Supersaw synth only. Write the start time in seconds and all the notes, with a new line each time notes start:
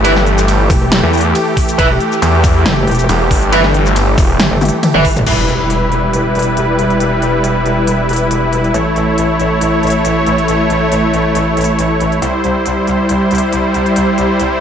Already playing: E3 A3 G4
5.27 G3 E4 B4
8.74 A3 C#5
12.22 G3 E4 C5